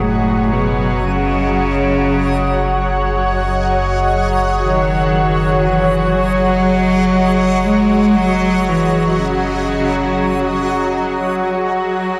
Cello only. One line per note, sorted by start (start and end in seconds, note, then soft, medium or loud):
0.02 0.54 A2 medium
0.52 1.06 B2 medium
1.04 3.09 C#3 medium
4.62 5.66 D#3 medium
5.65 6.15 E3 medium
6.15 7.67 F#3 loud
7.65 8.17 G#3 medium
8.16 8.70 F#3 loud
8.69 9.18 E3 medium
9.17 11.22 C#3 medium